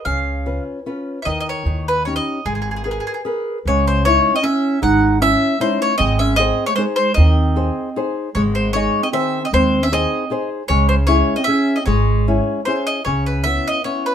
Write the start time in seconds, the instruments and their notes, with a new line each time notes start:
0.05 upright bass C#2, nylon-string guitar C#3, mandolin F5
0.46 nylon-string guitar C#4 F4 B4
0.86 nylon-string guitar C#4 F4 B4
1.22 upright bass D#2, nylon-string guitar D#3, mandolin D#5 E5
1.40 mandolin D#5
1.49 mandolin C#5
1.65 upright bass D#2, nylon-string guitar D#3
1.88 mandolin B4
2.05 nylon-string guitar C#4 D#4 G4, mandolin C#5
2.16 mandolin D#5
2.46 upright bass G#1, nylon-string guitar G#3, mandolin G#4
2.55 mandolin G#4
2.62 mandolin G#4
2.71 mandolin G#4
2.76 mandolin G#4
2.84 mandolin G#4, nylon-string guitar G#4 A#4 B4
2.91 mandolin G#4
3.00 mandolin G#4
3.07 mandolin G#4
3.14 mandolin G#4
3.25 nylon-string guitar G#4 A#4 B4
3.65 upright bass C#2, nylon-string guitar C#3, clarinet G#3, mandolin C#5
3.86 clarinet G#3, mandolin C5
4.04 clarinet G#3, nylon-string guitar C#4 D#4 E4, mandolin C#5
4.33 clarinet C4, mandolin D#5
4.41 clarinet C#4, nylon-string guitar C#4 E4, mandolin E5
4.82 upright bass G#1, nylon-string guitar G#3, clarinet D#4, mandolin F#5
5.20 clarinet C#4, nylon-string guitar C#4 E4, mandolin E5
5.59 clarinet G#3, nylon-string guitar C#4 D#4 E4, mandolin C5
5.80 clarinet A3, mandolin C#5
5.98 upright bass G#1, nylon-string guitar G#3, clarinet C4, mandolin D#5
6.19 clarinet C#4, mandolin E5
6.36 clarinet C4, nylon-string guitar D#4 G#4 C5, mandolin D#5
6.66 clarinet A3, mandolin C#5
6.75 clarinet G#3, nylon-string guitar D#4 G#4, mandolin C5
6.79 nylon-string guitar C5
6.96 clarinet G#3, mandolin C5
7.14 upright bass D#2, nylon-string guitar D#3, clarinet C4, mandolin D#5
7.56 nylon-string guitar D#4 G#4 C5
7.96 nylon-string guitar D#4 G#4 C5
8.35 upright bass G#1, clarinet G#3, nylon-string guitar G#3, mandolin C#5
8.55 clarinet G#3, mandolin C5
8.72 clarinet G#3, nylon-string guitar D#4 G#4 D#5, mandolin C#5
9.02 clarinet C4, mandolin D#5
9.10 nylon-string guitar D#3 G#4 C5, clarinet C4, mandolin E5
9.42 clarinet C4, mandolin D#5
9.52 upright bass D#2, clarinet G#3, nylon-string guitar C4, mandolin C5
9.82 clarinet C#4, mandolin E5
9.90 clarinet C4, nylon-string guitar D#4 G#4 C5, mandolin D#5
10.30 nylon-string guitar D#4 G#4 C5
10.68 upright bass C#2, nylon-string guitar C#3, clarinet G#3, mandolin C#5
10.89 clarinet G#3, mandolin C5
11.07 clarinet G#3, nylon-string guitar C#4 E4 G#4, mandolin C#5
11.36 clarinet C4, mandolin D#5
11.44 nylon-string guitar C#4 E4, mandolin E5
11.48 clarinet C#4, nylon-string guitar G#4
11.76 clarinet C4, mandolin D#5
11.86 upright bass G#1, nylon-string guitar G#3, clarinet G#3, mandolin C#5
12.27 nylon-string guitar C#4 E4 G#4
12.65 nylon-string guitar C#4 E4 G#4, mandolin C5
12.87 mandolin D#5
13.05 upright bass C#2, nylon-string guitar C#3, mandolin C#5
13.26 mandolin B4
13.44 nylon-string guitar B3 C#4 E4, mandolin E5
13.68 mandolin D#5
13.84 nylon-string guitar B3 C#4 E4, mandolin C#5
14.06 mandolin B4